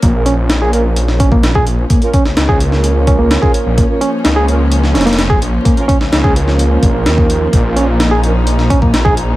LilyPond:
<<
  \new Staff \with { instrumentName = "Brass ensemble" } { \time 4/4 \key bes \minor \tempo 4 = 128 r16 <des' f' bes'>16 r4 <des' f' bes'>16 r2 r16 | r16 <des' f' bes'>16 r4 <des' f' bes'>2~ <des' f' bes'>8~ | <des' f' bes'>16 <des' f' bes'>16 r4 <des' f' bes'>16 r2 r16 | r16 <des' f' bes'>16 r4 <des' f' bes'>2~ <des' f' bes'>8~ |
<des' f' bes'>16 <des' f' bes'>16 r4 <des' f' bes'>16 r2 r16 | }
  \new Staff \with { instrumentName = "Reed electric piano" } { \time 4/4 \key bes \minor bes16 r16 des'16 r16 ees'16 aes'16 r4 des'16 bes16 r16 aes'16 r8 | bes16 r16 des'16 r16 ees'16 aes'16 r4 des'16 bes16 r16 aes'16 r8 | bes16 r16 des'16 r16 ees'16 aes'16 r4 des'16 bes16 r16 aes'16 r8 | bes16 r16 des'16 r16 ees'16 aes'16 r4 bes16 bes16 r16 bes16 r8 |
bes16 r16 des'16 r16 ees'16 aes'16 r4 des'16 bes16 r16 aes'16 r8 | }
  \new Staff \with { instrumentName = "String section" } { \time 4/4 \key bes \minor << { des'1~ | des'1~ | des'1~ | des'1 |
ees'1 | } \\ { <f bes>1~ | <f bes>1~ | <f bes>1~ | <f bes>1~ |
<f bes>1 | } >> }
  \new Staff \with { instrumentName = "Detuned saw bass" } { \clef bass \time 4/4 \key bes \minor bes,,1 | r8. des,16 des,2~ des,16 r8 bes,,16 | r4 des,4. f,,4 bes,,16 r16 | r8. des,16 des,4. bes,,8 ees,4 |
bes,,1 | }
  \new DrumStaff \with { instrumentName = "Drums" } \drummode { \time 4/4 <hh bd>8 hh8 <hh sn>8 hh8 hh16 sn16 <hh bd>16 bd16 <hh sn>16 bd16 hh8 | <hh bd>16 hh16 <hh bd>16 sn16 <hh sn>16 bd16 hh16 sn16 hh8 <hh bd>8 <hh sn>16 bd16 hh8 | <hh bd>8 hh8 <hh sn>8 hh8 hh16 sn16 <hh sn>32 <hh sn>32 <hh sn>32 <hh sn>32 <hh sn>16 bd16 hh8 | <hh bd>16 hh16 <hh bd>16 sn16 <hh sn>16 bd16 hh16 sn16 hh8 <hh bd>8 <hh sn>16 bd16 hh8 |
<hh bd>8 hh8 <hh sn>8 hh8 hh16 sn16 <hh bd>16 bd16 <hh sn>16 bd16 hh8 | }
>>